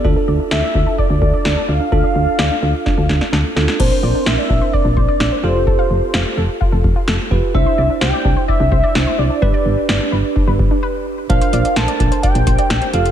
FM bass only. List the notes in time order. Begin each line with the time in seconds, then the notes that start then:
0.05 D2
0.28 D2
0.52 D2
0.75 D2
1.10 D2
1.22 D2
1.45 D2
1.69 D2
1.92 D2
2.16 D2
2.39 D2
2.63 D2
2.98 D2
3.10 D2
3.33 D2
3.56 D2
3.80 A#1
4.03 A#1
4.26 A#1
4.50 A#1
4.85 A#1
4.97 A#1
5.20 A#1
5.44 F1
5.91 F1
6.14 F1
6.38 F1
6.73 F1
6.84 F1
7.08 F1
7.31 F1
7.55 C2
7.78 C2
8.02 C2
8.25 C2
8.60 C2
8.72 C2
8.95 C2
9.19 C2
9.42 G1
9.66 G1
9.89 G1
10.12 G1
10.48 G1
10.59 G1
11.30 A#1
11.53 A#1
11.76 A#1
12.00 A#1
12.35 A#1
12.47 A#1
12.70 A#1
12.94 F1